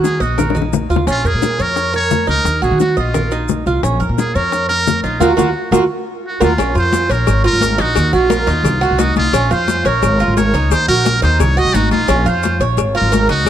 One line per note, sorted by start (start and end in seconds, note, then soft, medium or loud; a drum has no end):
0.00 0.20 D#3 loud
0.00 0.20 F#4 medium
0.00 0.23 G#4 medium
0.00 high bongo medium
0.04 high conga medium
0.04 maracas medium
0.20 0.86 A#1 medium
0.20 0.63 F#4 medium
0.20 0.38 D#5 medium
0.20 high conga soft
0.20 maracas soft
0.38 0.55 A#4 medium
0.38 high bongo medium
0.38 high conga soft
0.38 low conga medium
0.38 maracas medium
0.50 high bongo medium
0.55 0.89 D#4 medium
0.55 high conga soft
0.55 low conga medium
0.55 maracas soft
0.62 high bongo medium
0.73 low bongo loud
0.73 high conga medium
0.73 maracas medium
0.89 1.06 D#2 medium
0.89 1.07 F4 medium
0.89 high conga soft
0.89 maracas soft
0.96 low bongo medium
1.07 1.24 A#1 loud
1.07 1.24 C#4 medium
1.07 1.28 F4 loud
1.07 high bongo medium
1.07 high conga soft
1.07 maracas medium
1.24 1.33 F2 medium
1.24 1.63 G#4 medium
1.24 1.58 A#4 medium
1.24 high bongo soft
1.24 high conga soft
1.24 maracas soft
1.34 1.58 A#2 medium
1.42 high bongo medium
1.42 high conga medium
1.42 maracas medium
1.59 2.25 F2 medium
1.59 1.95 A#4 loud
1.59 1.93 C#5 medium
1.59 high conga soft
1.59 maracas soft
1.76 high bongo medium
1.76 high conga soft
1.76 maracas medium
1.93 2.27 A#4 medium
1.93 2.27 C#5 loud
1.93 high bongo soft
1.93 high conga soft
1.93 maracas soft
2.11 high bongo soft
2.11 low bongo medium
2.11 high conga medium
2.11 maracas medium
2.27 2.44 C#2 medium
2.27 2.61 D#4 medium
2.27 2.61 A#4 loud
2.27 high bongo soft
2.27 maracas soft
2.44 2.61 D#2 loud
2.44 high bongo medium
2.44 maracas medium
2.62 2.70 A#1 medium
2.62 2.96 F#4 medium
2.62 2.79 G#4 medium
2.62 high bongo soft
2.62 high conga soft
2.62 maracas soft
2.71 2.96 D#3 loud
2.80 2.96 F#4 medium
2.80 high bongo medium
2.80 high conga medium
2.80 maracas medium
2.97 3.63 A#1 medium
2.97 3.63 F4 medium
2.97 3.14 D#5 medium
2.97 high conga soft
2.97 maracas soft
3.14 3.31 A#4 medium
3.14 high bongo medium
3.14 high conga soft
3.14 low conga medium
3.14 maracas medium
3.31 3.65 D#4 medium
3.31 high bongo soft
3.31 high conga soft
3.31 maracas soft
3.49 high bongo soft
3.49 low bongo medium
3.49 high conga medium
3.49 maracas medium
3.66 3.83 C2 medium
3.66 3.83 F4 medium
3.66 high bongo soft
3.66 high conga soft
3.66 maracas soft
3.83 4.00 A#1 loud
3.83 4.00 C#4 medium
3.83 high bongo medium
3.83 high conga soft
3.83 maracas medium
4.00 4.08 F2 medium
4.00 4.34 A#4 medium
4.00 high bongo soft
4.00 high conga soft
4.00 maracas soft
4.09 4.34 A#2 medium
4.18 4.37 G#4 loud
4.18 high bongo medium
4.18 high conga medium
4.18 maracas medium
4.35 5.00 F2 medium
4.35 4.68 A#4 loud
4.35 4.69 C#5 medium
4.35 high conga soft
4.35 maracas soft
4.52 high bongo medium
4.52 high conga soft
4.52 maracas medium
4.69 5.01 A#4 loud
4.69 5.03 A#4 medium
4.69 high bongo soft
4.69 high conga soft
4.69 maracas soft
4.87 high bongo soft
4.87 low bongo medium
4.87 high conga medium
4.87 maracas medium
5.03 5.19 A#1 medium
5.03 5.20 D#4 medium
5.03 5.23 F4 medium
5.03 high bongo soft
5.03 maracas soft
5.20 5.33 D#2 medium
5.20 5.32 F4 loud
5.20 5.32 F#4 loud
5.20 5.73 F#4 medium
5.20 5.32 A#4 medium
5.20 low bongo loud
5.20 high conga medium
5.20 maracas loud
5.37 5.50 D#2 medium
5.37 5.49 F4 medium
5.37 5.49 F#4 medium
5.37 5.49 A#4 loud
5.37 low bongo medium
5.37 high conga medium
5.37 maracas medium
5.71 5.85 D#2 loud
5.71 5.83 F4 medium
5.71 5.83 F#4 loud
5.71 5.83 A#4 medium
5.71 low bongo medium
5.71 high conga medium
5.71 maracas loud
6.27 6.42 F#4 medium
6.41 6.54 D#2 loud
6.41 6.52 F4 medium
6.41 6.75 F4 medium
6.41 6.52 F#4 loud
6.41 6.52 A#4 medium
6.41 low bongo medium
6.41 high conga medium
6.41 maracas medium
6.58 6.74 A#1 medium
6.58 6.75 C#4 medium
6.58 cowbell loud
6.58 high conga soft
6.58 maracas medium
6.75 7.08 F2 loud
6.75 7.09 F4 medium
6.75 7.13 C5 loud
6.75 high conga soft
6.75 maracas soft
6.93 cowbell medium
6.93 high conga loud
6.93 maracas medium
7.09 7.26 A#1 loud
7.09 7.45 A#4 loud
7.09 7.43 C#5 medium
7.09 cowbell medium
7.09 high conga soft
7.09 maracas soft
7.27 7.52 G#1 loud
7.27 cowbell loud
7.27 high conga soft
7.27 maracas medium
7.44 7.61 F4 medium
7.44 7.82 A#4 loud
7.44 high conga soft
7.44 maracas soft
7.53 7.78 G#1 medium
7.61 7.78 A#4 medium
7.61 cowbell medium
7.61 high conga medium
7.61 maracas medium
7.78 7.95 A#1 loud
7.78 8.12 D#4 medium
7.78 8.14 F#4 loud
7.78 cowbell medium
7.78 high conga soft
7.78 maracas soft
7.95 8.12 D#2 loud
7.95 cowbell loud
7.95 high conga soft
7.95 maracas medium
8.12 8.46 A#1 loud
8.12 9.02 F4 loud
8.12 8.30 F#4 medium
8.12 high conga soft
8.12 maracas soft
8.30 8.47 A#4 medium
8.30 cowbell medium
8.30 high conga loud
8.30 maracas medium
8.47 8.63 D#2 medium
8.47 8.81 D#4 medium
8.47 cowbell medium
8.47 high conga soft
8.47 maracas soft
8.64 8.89 C2 loud
8.64 cowbell loud
8.64 high conga soft
8.64 low conga medium
8.64 maracas medium
8.81 8.98 F#4 medium
8.81 high conga soft
8.81 maracas soft
8.91 9.15 C2 medium
8.99 9.32 D#4 medium
8.99 9.17 F#4 medium
8.99 cowbell medium
8.99 high conga medium
8.99 maracas medium
9.16 9.32 C2 medium
9.16 9.54 F4 loud
9.16 cowbell medium
9.16 high conga medium
9.16 maracas soft
9.33 9.50 A#1 medium
9.33 9.50 C#4 medium
9.33 cowbell loud
9.33 maracas medium
9.51 9.84 F2 loud
9.51 9.84 F4 medium
9.51 9.88 C5 medium
9.51 high conga soft
9.51 maracas soft
9.68 cowbell medium
9.68 high conga medium
9.68 maracas medium
9.85 10.01 A#1 medium
9.85 10.37 A#4 loud
9.85 10.19 C#5 medium
9.85 cowbell medium
9.85 high conga soft
9.85 maracas soft
10.02 10.27 G#1 loud
10.02 cowbell loud
10.02 high conga soft
10.02 maracas medium
10.20 10.37 F4 medium
10.20 high conga soft
10.20 maracas soft
10.28 10.53 G#1 medium
10.37 10.54 A#4 medium
10.37 10.73 C#5 medium
10.37 cowbell medium
10.37 high conga medium
10.37 maracas medium
10.54 10.70 C#2 medium
10.54 10.88 D#4 medium
10.54 cowbell medium
10.54 high conga soft
10.54 maracas soft
10.70 10.87 D#2 medium
10.70 10.88 C5 loud
10.70 cowbell loud
10.70 high conga soft
10.70 maracas medium
10.88 11.21 A#1 loud
10.88 11.05 F#4 medium
10.88 11.20 A#4 loud
10.88 high conga soft
10.88 maracas soft
11.05 11.22 A#4 medium
11.05 cowbell medium
11.05 high conga loud
11.05 maracas medium
11.22 11.39 D#2 medium
11.22 11.56 D#4 medium
11.22 11.42 C5 loud
11.22 cowbell medium
11.22 high conga soft
11.22 maracas soft
11.39 11.64 C2 loud
11.39 11.60 C#5 loud
11.39 cowbell loud
11.39 high conga soft
11.39 low conga medium
11.39 maracas medium
11.57 11.74 F#4 medium
11.57 11.76 D#5 loud
11.57 high conga soft
11.57 maracas soft
11.65 11.73 C2 medium
11.74 11.90 G#1 medium
11.74 12.08 D#4 medium
11.74 11.91 F#4 loud
11.74 cowbell medium
11.74 high conga medium
11.74 maracas medium
11.91 12.07 A#1 medium
11.91 12.30 F4 loud
11.91 cowbell medium
11.91 high conga medium
11.91 maracas soft
12.08 12.24 A#1 loud
12.08 12.25 C#4 medium
12.08 cowbell loud
12.08 high conga soft
12.08 maracas medium
12.25 12.58 F2 loud
12.25 12.59 F4 medium
12.25 12.61 C5 medium
12.25 high conga soft
12.25 maracas soft
12.43 cowbell medium
12.43 high conga medium
12.43 maracas medium
12.60 12.76 A#1 medium
12.60 12.94 C#5 medium
12.60 cowbell medium
12.60 high conga soft
12.60 maracas soft
12.77 13.01 G#1 loud
12.77 cowbell loud
12.77 high conga soft
12.77 maracas medium
12.95 13.11 F4 medium
12.95 13.28 A#4 loud
12.95 high conga soft
12.95 maracas soft
13.01 13.27 G#1 loud
13.12 13.29 A#4 medium
13.12 cowbell medium
13.12 high conga medium
13.12 maracas medium
13.28 13.44 C#2 medium
13.28 13.49 D#4 loud
13.28 13.49 F#4 loud
13.28 cowbell medium
13.28 high conga soft
13.28 maracas soft
13.45 13.49 D#2 loud